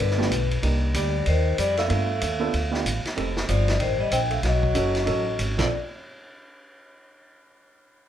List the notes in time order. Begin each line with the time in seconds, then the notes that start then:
Already playing: D3 B4
0.00 G1
0.11 snare
0.18 A3 B3 D4 F4 G4, snare
0.31 B1, hi-hat pedal, ride
0.51 ride
0.62 C2 A#3 D4 D#4 G4, ride
0.94 D2 G3 D5, hi-hat pedal, ride
1.26 D#2 D#3 C5, ride
1.58 F2 G3 D5, hi-hat pedal, ride
1.77 A3 F5, snare, ride
1.88 G2 B3 D4 F4 A4, ride
2.21 D#2, hi-hat pedal, ride
2.39 B3 D4 F4 A4
2.54 D2, ride
2.71 B3 D4 F4 G4, snare
2.85 A1, hi-hat pedal, ride
3.05 muted upright bass stroke, snare, ride
3.15 F1 C4 D#4 G4 A4, ride
3.37 snare
3.48 G1 F3 D5, hi-hat pedal, ride
3.68 snare, ride
3.79 A1 D#3 C5, ride
3.99 G3 D#5
4.11 A#1 C4 G5, hi-hat pedal, ride
4.30 A3 F5, ride
4.43 B1 F#3 D#5, snare, ride
4.63 kick
4.74 F#1 C#4 D#4 F#4 A4, hi-hat pedal, ride
4.95 snare, ride
5.05 A1 C#4 D#4 F#4 A4, ride
5.39 G#1, hi-hat pedal, ride
5.58 A#1 F3 C4 D4 F4 A4 D5, kick, snare, crash